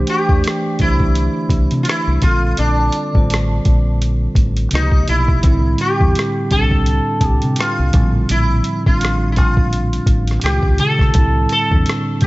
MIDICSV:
0, 0, Header, 1, 5, 480
1, 0, Start_track
1, 0, Tempo, 714286
1, 1734, Time_signature, 4, 2, 24, 8
1, 8244, End_track
2, 0, Start_track
2, 0, Title_t, "Sitar"
2, 0, Program_c, 0, 104
2, 63, Note_on_c, 0, 67, 94
2, 543, Note_off_c, 0, 67, 0
2, 546, Note_on_c, 0, 64, 80
2, 1228, Note_off_c, 0, 64, 0
2, 1231, Note_on_c, 0, 65, 62
2, 1262, Note_off_c, 0, 65, 0
2, 1267, Note_on_c, 0, 64, 76
2, 1484, Note_off_c, 0, 64, 0
2, 1499, Note_on_c, 0, 65, 77
2, 1736, Note_off_c, 0, 65, 0
2, 1739, Note_on_c, 0, 62, 67
2, 2669, Note_off_c, 0, 62, 0
2, 3186, Note_on_c, 0, 63, 75
2, 3418, Note_off_c, 0, 63, 0
2, 3421, Note_on_c, 0, 64, 86
2, 3901, Note_off_c, 0, 64, 0
2, 3904, Note_on_c, 0, 67, 95
2, 4379, Note_on_c, 0, 69, 87
2, 4393, Note_off_c, 0, 67, 0
2, 4890, Note_off_c, 0, 69, 0
2, 4890, Note_on_c, 0, 67, 87
2, 5102, Note_on_c, 0, 65, 79
2, 5118, Note_off_c, 0, 67, 0
2, 5583, Note_off_c, 0, 65, 0
2, 5586, Note_on_c, 0, 64, 79
2, 5930, Note_off_c, 0, 64, 0
2, 5959, Note_on_c, 0, 65, 79
2, 6261, Note_off_c, 0, 65, 0
2, 6264, Note_on_c, 0, 64, 58
2, 6294, Note_off_c, 0, 64, 0
2, 6297, Note_on_c, 0, 65, 83
2, 7010, Note_off_c, 0, 65, 0
2, 7013, Note_on_c, 0, 67, 78
2, 7255, Note_on_c, 0, 69, 85
2, 7260, Note_off_c, 0, 67, 0
2, 7736, Note_off_c, 0, 69, 0
2, 7744, Note_on_c, 0, 69, 91
2, 8192, Note_off_c, 0, 69, 0
2, 8222, Note_on_c, 0, 67, 79
2, 8244, Note_off_c, 0, 67, 0
2, 8244, End_track
3, 0, Start_track
3, 0, Title_t, "Tine electric piano"
3, 0, Program_c, 1, 4
3, 0, Control_c, 1, 64, 127
3, 0, Note_on_c, 1, 52, 79
3, 0, Note_on_c, 1, 57, 77
3, 0, Note_on_c, 1, 62, 76
3, 0, Note_on_c, 1, 67, 75
3, 0, Note_on_c, 1, 72, 88
3, 149, Note_off_c, 1, 52, 0
3, 153, Note_off_c, 1, 57, 0
3, 157, Note_off_c, 1, 62, 0
3, 161, Note_off_c, 1, 67, 0
3, 165, Note_off_c, 1, 72, 0
3, 186, Note_on_c, 1, 52, 61
3, 192, Note_on_c, 1, 57, 56
3, 200, Note_on_c, 1, 62, 58
3, 210, Note_on_c, 1, 67, 54
3, 218, Note_on_c, 1, 74, 71
3, 502, Note_off_c, 1, 52, 0
3, 505, Note_off_c, 1, 57, 0
3, 509, Note_off_c, 1, 62, 0
3, 514, Note_off_c, 1, 67, 0
3, 518, Note_off_c, 1, 74, 0
3, 531, Note_on_c, 1, 50, 46
3, 539, Note_on_c, 1, 57, 53
3, 546, Note_on_c, 1, 62, 51
3, 555, Note_on_c, 1, 67, 52
3, 563, Note_on_c, 1, 72, 63
3, 575, Note_on_c, 1, 52, 57
3, 582, Note_off_c, 1, 50, 0
3, 1418, Note_off_c, 1, 57, 0
3, 1421, Note_off_c, 1, 62, 0
3, 1426, Note_off_c, 1, 67, 0
3, 1430, Note_off_c, 1, 72, 0
3, 1436, Note_off_c, 1, 52, 0
3, 1488, Note_on_c, 1, 50, 67
3, 1496, Note_on_c, 1, 55, 62
3, 1503, Control_c, 1, 64, 0
3, 1503, Note_on_c, 1, 60, 61
3, 1512, Note_on_c, 1, 65, 60
3, 1521, Note_on_c, 1, 69, 71
3, 1637, Control_c, 1, 64, 127
3, 2043, Note_off_c, 1, 50, 0
3, 2046, Note_off_c, 1, 55, 0
3, 2050, Note_off_c, 1, 60, 0
3, 2055, Note_off_c, 1, 65, 0
3, 2059, Note_off_c, 1, 69, 0
3, 2102, Note_on_c, 1, 50, 63
3, 2112, Note_on_c, 1, 55, 58
3, 2120, Note_on_c, 1, 60, 56
3, 2128, Note_on_c, 1, 65, 56
3, 2135, Note_on_c, 1, 72, 65
3, 2962, Note_off_c, 1, 50, 0
3, 2967, Note_off_c, 1, 55, 0
3, 2972, Note_off_c, 1, 60, 0
3, 2976, Note_off_c, 1, 65, 0
3, 2979, Note_off_c, 1, 72, 0
3, 3166, Note_on_c, 1, 48, 67
3, 3174, Note_on_c, 1, 53, 58
3, 3181, Note_on_c, 1, 58, 62
3, 3183, Control_c, 1, 64, 0
3, 3191, Note_on_c, 1, 63, 60
3, 3199, Note_on_c, 1, 66, 56
3, 3236, Note_off_c, 1, 66, 0
3, 3243, Note_on_c, 1, 67, 72
3, 3311, Control_c, 1, 64, 127
3, 3610, Note_off_c, 1, 48, 0
3, 3615, Note_off_c, 1, 53, 0
3, 3618, Note_off_c, 1, 58, 0
3, 3623, Note_off_c, 1, 63, 0
3, 3645, Note_on_c, 1, 45, 82
3, 3649, Note_off_c, 1, 67, 0
3, 3652, Note_on_c, 1, 50, 81
3, 3660, Note_on_c, 1, 55, 74
3, 3662, Control_c, 1, 64, 0
3, 3669, Note_on_c, 1, 60, 81
3, 3677, Note_on_c, 1, 64, 93
3, 3775, Control_c, 1, 64, 127
3, 3987, Note_off_c, 1, 45, 0
3, 3991, Note_off_c, 1, 50, 0
3, 3994, Note_off_c, 1, 55, 0
3, 3999, Note_off_c, 1, 60, 0
3, 4003, Note_off_c, 1, 64, 0
3, 4021, Note_on_c, 1, 45, 61
3, 4029, Note_on_c, 1, 50, 55
3, 4036, Note_on_c, 1, 55, 55
3, 4046, Note_on_c, 1, 60, 57
3, 4053, Note_on_c, 1, 64, 68
3, 4339, Note_off_c, 1, 45, 0
3, 4344, Note_off_c, 1, 50, 0
3, 4347, Note_off_c, 1, 55, 0
3, 4352, Note_off_c, 1, 60, 0
3, 4356, Note_off_c, 1, 64, 0
3, 4364, Note_on_c, 1, 45, 59
3, 4372, Note_on_c, 1, 50, 50
3, 4380, Note_on_c, 1, 55, 50
3, 4389, Note_on_c, 1, 60, 55
3, 4397, Note_on_c, 1, 62, 65
3, 5250, Note_off_c, 1, 45, 0
3, 5254, Note_off_c, 1, 50, 0
3, 5258, Note_off_c, 1, 55, 0
3, 5263, Note_off_c, 1, 60, 0
3, 5267, Note_off_c, 1, 62, 0
3, 5326, Note_on_c, 1, 45, 68
3, 5335, Note_on_c, 1, 50, 63
3, 5341, Control_c, 1, 64, 0
3, 5344, Note_on_c, 1, 55, 64
3, 5351, Note_on_c, 1, 60, 61
3, 5361, Note_on_c, 1, 53, 74
3, 5450, Control_c, 1, 64, 127
3, 5882, Note_off_c, 1, 45, 0
3, 5886, Note_off_c, 1, 50, 0
3, 5891, Note_off_c, 1, 55, 0
3, 5894, Note_off_c, 1, 60, 0
3, 5899, Note_off_c, 1, 53, 0
3, 5942, Note_on_c, 1, 45, 58
3, 5950, Note_on_c, 1, 50, 61
3, 5958, Note_on_c, 1, 55, 58
3, 5967, Note_on_c, 1, 60, 57
3, 5976, Note_on_c, 1, 62, 74
3, 6803, Note_off_c, 1, 45, 0
3, 6806, Note_off_c, 1, 50, 0
3, 6811, Note_off_c, 1, 55, 0
3, 6815, Note_off_c, 1, 60, 0
3, 6820, Note_off_c, 1, 62, 0
3, 7006, Note_on_c, 1, 46, 67
3, 7016, Note_on_c, 1, 51, 62
3, 7023, Control_c, 1, 64, 0
3, 7023, Note_on_c, 1, 56, 60
3, 7032, Note_on_c, 1, 61, 57
3, 7039, Note_on_c, 1, 64, 59
3, 7076, Note_off_c, 1, 64, 0
3, 7083, Note_on_c, 1, 65, 72
3, 7152, Control_c, 1, 64, 127
3, 7450, Note_off_c, 1, 46, 0
3, 7455, Note_off_c, 1, 51, 0
3, 7459, Note_off_c, 1, 56, 0
3, 7464, Note_off_c, 1, 61, 0
3, 7484, Note_on_c, 1, 45, 82
3, 7489, Note_off_c, 1, 65, 0
3, 7492, Note_on_c, 1, 50, 75
3, 7501, Control_c, 1, 64, 0
3, 7502, Note_on_c, 1, 55, 76
3, 7510, Note_on_c, 1, 60, 75
3, 7518, Note_on_c, 1, 64, 91
3, 7637, Control_c, 1, 64, 127
3, 7826, Note_off_c, 1, 45, 0
3, 7830, Note_off_c, 1, 50, 0
3, 7835, Note_off_c, 1, 55, 0
3, 7839, Note_off_c, 1, 60, 0
3, 7844, Note_off_c, 1, 64, 0
3, 7861, Note_on_c, 1, 45, 63
3, 7868, Note_on_c, 1, 50, 60
3, 7878, Note_on_c, 1, 55, 56
3, 7886, Note_on_c, 1, 60, 54
3, 7894, Note_on_c, 1, 62, 69
3, 8180, Note_off_c, 1, 45, 0
3, 8183, Note_off_c, 1, 50, 0
3, 8188, Note_off_c, 1, 55, 0
3, 8192, Note_off_c, 1, 60, 0
3, 8196, Note_off_c, 1, 62, 0
3, 8200, Note_on_c, 1, 45, 59
3, 8208, Note_on_c, 1, 50, 56
3, 8217, Note_on_c, 1, 55, 54
3, 8244, Note_off_c, 1, 45, 0
3, 8244, Note_off_c, 1, 50, 0
3, 8244, Note_off_c, 1, 55, 0
3, 8244, End_track
4, 0, Start_track
4, 0, Title_t, "Fingered electric bass"
4, 0, Program_c, 2, 33
4, 199, Note_on_c, 2, 40, 76
4, 283, Note_off_c, 2, 40, 0
4, 539, Note_on_c, 2, 36, 79
4, 856, Note_off_c, 2, 36, 0
4, 1006, Note_on_c, 2, 36, 86
4, 1125, Note_off_c, 2, 36, 0
4, 1155, Note_on_c, 2, 48, 79
4, 1240, Note_off_c, 2, 48, 0
4, 1394, Note_on_c, 2, 36, 81
4, 1480, Note_off_c, 2, 36, 0
4, 1497, Note_on_c, 2, 34, 74
4, 1699, Note_off_c, 2, 34, 0
4, 1738, Note_on_c, 2, 34, 82
4, 1940, Note_off_c, 2, 34, 0
4, 2120, Note_on_c, 2, 33, 78
4, 2407, Note_off_c, 2, 33, 0
4, 2460, Note_on_c, 2, 34, 73
4, 2864, Note_off_c, 2, 34, 0
4, 2928, Note_on_c, 2, 33, 80
4, 3134, Note_off_c, 2, 33, 0
4, 3179, Note_on_c, 2, 37, 81
4, 3380, Note_off_c, 2, 37, 0
4, 3421, Note_on_c, 2, 35, 79
4, 3621, Note_off_c, 2, 35, 0
4, 3659, Note_on_c, 2, 36, 89
4, 3860, Note_off_c, 2, 36, 0
4, 4039, Note_on_c, 2, 40, 74
4, 4123, Note_off_c, 2, 40, 0
4, 4381, Note_on_c, 2, 36, 82
4, 4697, Note_off_c, 2, 36, 0
4, 4846, Note_on_c, 2, 36, 83
4, 4965, Note_off_c, 2, 36, 0
4, 4996, Note_on_c, 2, 48, 77
4, 5081, Note_off_c, 2, 48, 0
4, 5236, Note_on_c, 2, 36, 79
4, 5321, Note_off_c, 2, 36, 0
4, 5338, Note_on_c, 2, 34, 88
4, 5540, Note_off_c, 2, 34, 0
4, 5579, Note_on_c, 2, 34, 88
4, 5780, Note_off_c, 2, 34, 0
4, 5960, Note_on_c, 2, 33, 69
4, 6301, Note_off_c, 2, 33, 0
4, 6301, Note_on_c, 2, 34, 72
4, 6705, Note_off_c, 2, 34, 0
4, 6767, Note_on_c, 2, 33, 79
4, 6973, Note_off_c, 2, 33, 0
4, 7016, Note_on_c, 2, 37, 82
4, 7131, Note_off_c, 2, 37, 0
4, 7144, Note_on_c, 2, 37, 76
4, 7234, Note_off_c, 2, 37, 0
4, 7255, Note_on_c, 2, 49, 79
4, 7458, Note_off_c, 2, 49, 0
4, 7496, Note_on_c, 2, 36, 89
4, 7698, Note_off_c, 2, 36, 0
4, 7876, Note_on_c, 2, 40, 73
4, 7961, Note_off_c, 2, 40, 0
4, 8215, Note_on_c, 2, 36, 79
4, 8244, Note_off_c, 2, 36, 0
4, 8244, End_track
5, 0, Start_track
5, 0, Title_t, "Drums"
5, 47, Note_on_c, 9, 42, 58
5, 114, Note_off_c, 9, 42, 0
5, 196, Note_on_c, 9, 36, 76
5, 263, Note_off_c, 9, 36, 0
5, 295, Note_on_c, 9, 42, 63
5, 319, Note_on_c, 9, 37, 90
5, 362, Note_off_c, 9, 42, 0
5, 387, Note_off_c, 9, 37, 0
5, 530, Note_on_c, 9, 42, 49
5, 536, Note_on_c, 9, 36, 73
5, 597, Note_off_c, 9, 42, 0
5, 604, Note_off_c, 9, 36, 0
5, 671, Note_on_c, 9, 36, 71
5, 738, Note_off_c, 9, 36, 0
5, 775, Note_on_c, 9, 42, 59
5, 842, Note_off_c, 9, 42, 0
5, 1004, Note_on_c, 9, 36, 78
5, 1010, Note_on_c, 9, 42, 55
5, 1072, Note_off_c, 9, 36, 0
5, 1077, Note_off_c, 9, 42, 0
5, 1148, Note_on_c, 9, 42, 44
5, 1215, Note_off_c, 9, 42, 0
5, 1243, Note_on_c, 9, 42, 69
5, 1273, Note_on_c, 9, 37, 94
5, 1310, Note_off_c, 9, 42, 0
5, 1340, Note_off_c, 9, 37, 0
5, 1490, Note_on_c, 9, 42, 63
5, 1494, Note_on_c, 9, 36, 90
5, 1557, Note_off_c, 9, 42, 0
5, 1561, Note_off_c, 9, 36, 0
5, 1729, Note_on_c, 9, 42, 82
5, 1796, Note_off_c, 9, 42, 0
5, 1965, Note_on_c, 9, 42, 60
5, 2032, Note_off_c, 9, 42, 0
5, 2116, Note_on_c, 9, 36, 77
5, 2183, Note_off_c, 9, 36, 0
5, 2218, Note_on_c, 9, 42, 71
5, 2243, Note_on_c, 9, 37, 92
5, 2285, Note_off_c, 9, 42, 0
5, 2310, Note_off_c, 9, 37, 0
5, 2454, Note_on_c, 9, 42, 49
5, 2457, Note_on_c, 9, 36, 77
5, 2521, Note_off_c, 9, 42, 0
5, 2524, Note_off_c, 9, 36, 0
5, 2699, Note_on_c, 9, 42, 60
5, 2766, Note_off_c, 9, 42, 0
5, 2925, Note_on_c, 9, 36, 81
5, 2932, Note_on_c, 9, 42, 53
5, 2992, Note_off_c, 9, 36, 0
5, 2999, Note_off_c, 9, 42, 0
5, 3068, Note_on_c, 9, 42, 44
5, 3135, Note_off_c, 9, 42, 0
5, 3164, Note_on_c, 9, 42, 73
5, 3194, Note_on_c, 9, 37, 93
5, 3231, Note_off_c, 9, 42, 0
5, 3261, Note_off_c, 9, 37, 0
5, 3304, Note_on_c, 9, 36, 82
5, 3371, Note_off_c, 9, 36, 0
5, 3411, Note_on_c, 9, 42, 67
5, 3478, Note_off_c, 9, 42, 0
5, 3550, Note_on_c, 9, 36, 81
5, 3617, Note_off_c, 9, 36, 0
5, 3649, Note_on_c, 9, 42, 89
5, 3655, Note_on_c, 9, 36, 101
5, 3716, Note_off_c, 9, 42, 0
5, 3722, Note_off_c, 9, 36, 0
5, 3886, Note_on_c, 9, 42, 61
5, 3953, Note_off_c, 9, 42, 0
5, 4036, Note_on_c, 9, 36, 74
5, 4104, Note_off_c, 9, 36, 0
5, 4135, Note_on_c, 9, 42, 68
5, 4160, Note_on_c, 9, 37, 84
5, 4203, Note_off_c, 9, 42, 0
5, 4227, Note_off_c, 9, 37, 0
5, 4372, Note_on_c, 9, 42, 51
5, 4377, Note_on_c, 9, 36, 77
5, 4440, Note_off_c, 9, 42, 0
5, 4444, Note_off_c, 9, 36, 0
5, 4511, Note_on_c, 9, 36, 69
5, 4578, Note_off_c, 9, 36, 0
5, 4611, Note_on_c, 9, 42, 63
5, 4678, Note_off_c, 9, 42, 0
5, 4843, Note_on_c, 9, 36, 77
5, 4844, Note_on_c, 9, 42, 58
5, 4910, Note_off_c, 9, 36, 0
5, 4911, Note_off_c, 9, 42, 0
5, 4984, Note_on_c, 9, 42, 44
5, 5052, Note_off_c, 9, 42, 0
5, 5080, Note_on_c, 9, 42, 74
5, 5111, Note_on_c, 9, 37, 91
5, 5148, Note_off_c, 9, 42, 0
5, 5178, Note_off_c, 9, 37, 0
5, 5329, Note_on_c, 9, 42, 63
5, 5335, Note_on_c, 9, 36, 95
5, 5397, Note_off_c, 9, 42, 0
5, 5402, Note_off_c, 9, 36, 0
5, 5571, Note_on_c, 9, 42, 86
5, 5639, Note_off_c, 9, 42, 0
5, 5806, Note_on_c, 9, 42, 58
5, 5874, Note_off_c, 9, 42, 0
5, 5957, Note_on_c, 9, 36, 78
5, 6024, Note_off_c, 9, 36, 0
5, 6054, Note_on_c, 9, 42, 67
5, 6079, Note_on_c, 9, 37, 86
5, 6121, Note_off_c, 9, 42, 0
5, 6146, Note_off_c, 9, 37, 0
5, 6292, Note_on_c, 9, 42, 50
5, 6297, Note_on_c, 9, 36, 75
5, 6359, Note_off_c, 9, 42, 0
5, 6364, Note_off_c, 9, 36, 0
5, 6431, Note_on_c, 9, 36, 73
5, 6499, Note_off_c, 9, 36, 0
5, 6536, Note_on_c, 9, 42, 64
5, 6604, Note_off_c, 9, 42, 0
5, 6673, Note_on_c, 9, 42, 47
5, 6741, Note_off_c, 9, 42, 0
5, 6764, Note_on_c, 9, 36, 79
5, 6767, Note_on_c, 9, 42, 61
5, 6831, Note_off_c, 9, 36, 0
5, 6835, Note_off_c, 9, 42, 0
5, 6905, Note_on_c, 9, 42, 45
5, 6929, Note_on_c, 9, 37, 31
5, 6972, Note_off_c, 9, 42, 0
5, 6996, Note_off_c, 9, 37, 0
5, 6999, Note_on_c, 9, 42, 70
5, 7029, Note_on_c, 9, 37, 98
5, 7066, Note_off_c, 9, 42, 0
5, 7096, Note_off_c, 9, 37, 0
5, 7142, Note_on_c, 9, 36, 80
5, 7209, Note_off_c, 9, 36, 0
5, 7246, Note_on_c, 9, 42, 62
5, 7313, Note_off_c, 9, 42, 0
5, 7386, Note_on_c, 9, 36, 77
5, 7401, Note_on_c, 9, 37, 28
5, 7453, Note_off_c, 9, 36, 0
5, 7468, Note_off_c, 9, 37, 0
5, 7485, Note_on_c, 9, 42, 82
5, 7492, Note_on_c, 9, 36, 99
5, 7552, Note_off_c, 9, 42, 0
5, 7559, Note_off_c, 9, 36, 0
5, 7723, Note_on_c, 9, 42, 57
5, 7790, Note_off_c, 9, 42, 0
5, 7872, Note_on_c, 9, 36, 73
5, 7940, Note_off_c, 9, 36, 0
5, 7969, Note_on_c, 9, 42, 64
5, 7993, Note_on_c, 9, 37, 87
5, 8036, Note_off_c, 9, 42, 0
5, 8061, Note_off_c, 9, 37, 0
5, 8203, Note_on_c, 9, 42, 49
5, 8212, Note_on_c, 9, 36, 76
5, 8244, Note_off_c, 9, 36, 0
5, 8244, Note_off_c, 9, 42, 0
5, 8244, End_track
0, 0, End_of_file